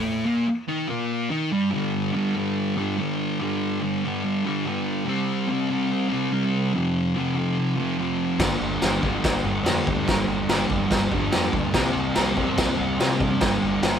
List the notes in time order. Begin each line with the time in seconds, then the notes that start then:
Already playing: A2 A3
0.26 A#2 A#3
0.48 muted distorted electric guitar stroke
0.68 D#3 D#4
0.88 A#2 A#3
1.30 D#3 D#4
1.51 G2 G3
1.71 G2 D3 G3
2.12 G2 D3 G3
2.35 D3 G3
2.77 D3 G3
2.97 G2 D3 G3
3.40 G2 D3 G3
3.81 G2 D3 G3
4.04 D3 G3
4.46 D3 G3
4.66 G2 D3 G3
5.06 C3 G3 C4
5.48 C3 G3 C4
5.70 G3 C4
6.09 C4
6.13 G3
6.31 C3 G3 C4
6.74 F2 C3 F3
7.15 F2 C3 F3
7.35 C3 F3
7.76 C3 F3
7.97 F2 C3 F3
8.39 G1 G2 D3 G3, kick, snare, crash
8.60 G1
8.82 G1 G2 D3 G3, snare, crash
9.02 G1 D3 G3, kick
9.24 G1, kick, snare, crash
9.44 G1 D3 G3
9.63 F2 G2 D3, snare, crash
9.68 G3
9.87 D2, kick
10.08 G1 G2 D3, kick, snare, crash
10.12 G3
10.27 G1
10.48 G1 G2, snare, crash
10.52 D3 G3
10.69 G1 D3 G3, kick
10.91 G1, kick, snare, crash
11.12 G1 D3 G3, kick
11.32 F2 G2 D3 G3, snare, crash
11.53 D2, kick
11.74 C2 C3 G3 C4, kick, snare, crash
11.96 C2
12.15 C2 C3 G3 C4, snare, crash
12.37 C2 G3 C4, kick
12.58 C2, kick, snare, crash
12.78 C2 G3 C4
12.99 A#2 C3 G3 C4, snare, crash
13.20 G2, kick
13.41 G1 G2 D3 G3, kick, snare, crash
13.63 G1
13.82 G1 G2 D3, snare, crash
13.87 G3